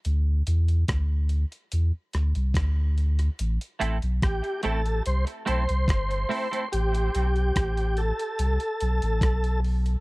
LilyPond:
<<
  \new Staff \with { instrumentName = "Tonewheel organ" } { \time 4/4 \key a \minor \tempo 4 = 72 r1 | r4 g'8 a'8 c''8 c''4. | g'4. a'2 r8 | }
  \new Staff \with { instrumentName = "Clean electric guitar" } { \time 4/4 \key a \minor r1 | r8 <a c' e' a'>16 r8. <a c' e' a'>16 r8. <a c' e' a'>16 r8. <a c' e' a'>16 <a c' e' a'>16 | r1 | }
  \new Staff \with { instrumentName = "Sub bass" } { \clef bass \time 4/4 \key a \minor d,8 e,8 d,8. r16 e,16 r16 d,16 c,16 d,4 | a,,16 r16 a,,16 b,,16 a,,16 r16 a,,8 c,16 r16 b,,16 c,16 g,,8 r8 | a,,8 b,,8 a,,8. r16 c,16 r16 b,,16 a,,16 b,,4 | }
  \new DrumStaff \with { instrumentName = "Drums" } \drummode { \time 4/4 hh8 hh16 hh16 <hh bd ss>8 hh16 hh16 hh8 <hh ss>16 hh16 <hh bd ss>8 hh16 hh16 | hh16 hh16 hh16 hh16 <hh bd ss>16 hh16 hh16 hh16 hh16 hh16 hh16 hh16 <hh bd ss>16 hh16 hho16 hh16 | hh16 hh16 hh16 hh16 <hh bd ss>16 hh16 hh16 hh16 hh16 hh16 hh16 hh16 <hh bd ss>16 hh16 hho16 hh16 | }
>>